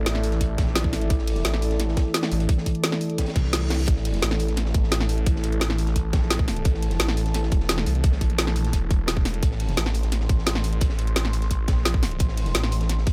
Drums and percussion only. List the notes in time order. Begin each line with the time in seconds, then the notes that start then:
0.06 snare, closed hi-hat
0.15 snare
0.24 closed hi-hat, open hi-hat
0.32 snare, closed hi-hat
0.41 kick, closed hi-hat
0.58 kick, snare, closed hi-hat
0.67 snare
0.76 snare, closed hi-hat
0.84 kick
0.93 snare, closed hi-hat, open hi-hat
1.02 closed hi-hat
1.10 kick, closed hi-hat
1.18 snare
1.27 closed hi-hat, open hi-hat
1.36 snare, closed hi-hat
1.45 snare, closed hi-hat
1.53 snare
1.62 closed hi-hat, open hi-hat
1.71 snare, closed hi-hat
1.80 snare, closed hi-hat
1.88 snare
1.97 kick, snare, closed hi-hat
2.14 snare, closed hi-hat
2.23 snare, closed hi-hat
2.32 open hi-hat
2.40 closed hi-hat
2.49 kick, closed hi-hat
2.58 snare
2.66 kick, closed hi-hat
2.75 closed hi-hat
2.84 snare, closed hi-hat
2.92 snare
3.01 open hi-hat
3.10 closed hi-hat
3.18 kick, snare, closed hi-hat
3.26 snare, closed hi-hat
3.36 kick, closed hi-hat
3.44 snare
3.53 snare, closed hi-hat
3.62 snare
3.70 snare, closed hi-hat, open hi-hat
3.79 snare, closed hi-hat
3.88 kick, closed hi-hat
3.97 snare
4.05 closed hi-hat, open hi-hat
4.14 snare, closed hi-hat
4.22 snare, closed hi-hat
4.31 snare
4.39 closed hi-hat, open hi-hat
4.48 snare, closed hi-hat
4.57 snare, closed hi-hat
4.65 snare
4.74 kick, closed hi-hat
4.84 snare
4.92 snare, closed hi-hat
5.00 snare
5.09 closed hi-hat, open hi-hat
5.18 closed hi-hat
5.26 kick, closed hi-hat
5.36 snare
5.43 closed hi-hat
5.52 closed hi-hat
5.60 snare, closed hi-hat
5.70 snare
5.78 closed hi-hat, open hi-hat
5.86 snare, closed hi-hat
5.96 kick, closed hi-hat
6.13 kick, snare, closed hi-hat
6.22 snare
6.30 snare, closed hi-hat
6.39 kick
6.48 snare, closed hi-hat, open hi-hat
6.57 closed hi-hat
6.65 kick, closed hi-hat
6.74 snare
6.82 closed hi-hat, open hi-hat
6.91 snare, closed hi-hat
7.00 snare, closed hi-hat
7.08 snare
7.17 closed hi-hat, open hi-hat
7.26 snare, closed hi-hat
7.34 snare, closed hi-hat
7.43 snare
7.51 kick, closed hi-hat
7.60 snare
7.69 snare, closed hi-hat
7.77 snare
7.86 closed hi-hat, open hi-hat
7.95 closed hi-hat
8.04 kick, closed hi-hat
8.12 snare
8.21 kick, closed hi-hat
8.30 closed hi-hat
8.38 snare, closed hi-hat
8.47 snare
8.56 closed hi-hat, open hi-hat
8.65 snare, closed hi-hat
8.73 kick, closed hi-hat
8.91 kick, closed hi-hat
9.07 snare, closed hi-hat
9.17 kick
9.25 snare, closed hi-hat, open hi-hat
9.34 closed hi-hat
9.43 kick, closed hi-hat
9.51 snare
9.60 closed hi-hat, open hi-hat
9.69 snare, closed hi-hat
9.77 snare, closed hi-hat
9.85 snare
9.94 closed hi-hat, open hi-hat
10.03 snare, closed hi-hat
10.12 snare, closed hi-hat
10.20 snare
10.29 kick, closed hi-hat
10.38 snare
10.46 snare, closed hi-hat
10.55 snare
10.64 closed hi-hat, open hi-hat
10.73 closed hi-hat
10.81 kick, closed hi-hat
10.89 snare
10.99 closed hi-hat
11.07 closed hi-hat
11.16 snare, closed hi-hat
11.25 snare
11.33 closed hi-hat, open hi-hat
11.42 snare, closed hi-hat
11.51 kick, closed hi-hat
11.68 kick, snare, closed hi-hat
11.78 snare
11.85 snare, closed hi-hat
11.94 kick
12.03 snare, closed hi-hat, open hi-hat
12.11 closed hi-hat
12.19 kick, closed hi-hat
12.29 snare
12.37 closed hi-hat, open hi-hat
12.46 snare, closed hi-hat
12.54 snare, closed hi-hat
12.63 snare
12.71 closed hi-hat, open hi-hat
12.81 snare, closed hi-hat
12.89 snare, closed hi-hat
12.98 snare
13.07 kick, closed hi-hat